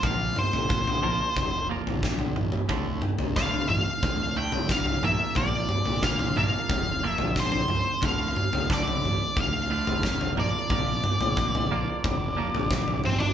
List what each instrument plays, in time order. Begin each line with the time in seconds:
0.03 fingered electric bass A#1, clean electric guitar A#2 F3 A#3, lead electric guitar F5, kick, floor tom
0.35 clean electric guitar A#2 F3, lead electric guitar C5, mid tom
0.53 fingered electric bass A#2, floor tom
0.69 clean electric guitar A#2 F3, kick
0.87 floor tom
1.03 fingered electric bass A#1, clean electric guitar A#2 F3 A#3
1.36 fingered electric bass F1, clean electric guitar F3, kick, floor tom
1.69 clean electric guitar A#2 F3 A#3
1.87 fingered electric bass A#1, floor tom
2.03 kick, snare
2.19 floor tom
2.36 fingered electric bass A1, clean electric guitar A#2 F3, mid tom
2.52 mid tom
2.69 clean electric guitar D2 A2 D3, fingered electric bass D2, kick, floor tom
3.02 clean electric guitar D2, mid tom
3.19 fingered electric bass D2, floor tom
3.36 clean electric guitar D2 A2 D3, lead electric guitar F5, kick, snare
3.54 floor tom
3.69 fingered electric bass A1, clean electric guitar D2 A2, lead electric guitar F5, mid tom
4.03 fingered electric bass D2, clean electric guitar D2 A2, kick, floor tom
4.37 clean electric guitar D2 A2 D3, lead electric guitar G5
4.52 fingered electric bass C2, floor tom
4.69 clean electric guitar A2, lead electric guitar F5, kick, snare
4.86 floor tom
5.03 fingered electric bass A#1, clean electric guitar A#2 F3 A#3, lead electric guitar E5, mid tom
5.35 fingered electric bass A#1, clean electric guitar A#2 F3 A#3, lead electric guitar D5, kick, floor tom
5.69 clean electric guitar F3, mid tom
5.86 fingered electric bass A#2, floor tom
6.03 clean electric guitar A#2 F3, lead electric guitar F5, kick, snare
6.19 floor tom
6.36 fingered electric bass A#1, clean electric guitar A#2 F3 A#3, lead electric guitar F5, mid tom
6.69 fingered electric bass F1, clean electric guitar F3, kick, floor tom
7.03 clean electric guitar A#2 F3 A#3, lead electric guitar E5
7.18 fingered electric bass A#1, floor tom
7.36 clean electric guitar A#2 F3, lead electric guitar C5, kick, snare
7.52 floor tom
7.68 fingered electric bass C#2, clean electric guitar A#2 F3, mid tom
8.02 fingered electric bass D2, clean electric guitar D2 A2 D3, lead electric guitar F5, kick, floor tom
8.36 clean electric guitar D2 A2, mid tom
8.53 fingered electric bass D2, floor tom
8.70 clean electric guitar D2 A2 D3, lead electric guitar D5, kick, snare
8.88 floor tom
9.03 fingered electric bass A1, clean electric guitar D2 A2, mid tom
9.37 fingered electric bass D2, clean electric guitar D2 A2, lead electric guitar F5, kick, floor tom
9.70 clean electric guitar D2 A2 D3
9.87 fingered electric bass F1, floor tom
10.03 clean electric guitar D2 A2, kick, snare
10.21 floor tom
10.36 fingered electric bass A#1, clean electric guitar A#2 F3 A#3, lead electric guitar D5, mid tom
10.70 fingered electric bass A#1, clean electric guitar A#2 F3 A#3, kick, floor tom
11.04 clean electric guitar A#2 F3, mid tom
11.20 fingered electric bass A#2, floor tom
11.37 clean electric guitar A#2 F3, kick
11.55 floor tom
11.71 fingered electric bass A#1, clean electric guitar A#2 F3 A#3
12.04 fingered electric bass F1, clean electric guitar A#2 F3, kick, floor tom
12.37 clean electric guitar A#2 F3 A#3
12.54 fingered electric bass A#1, floor tom
12.70 clean electric guitar A#2, kick, snare
12.87 fingered electric bass A#1, floor tom
13.04 fingered electric bass A1, clean electric guitar A#2 F3, lead electric guitar C4 C5, mid tom
13.19 fingered electric bass G1, lead electric guitar D4 D5, mid tom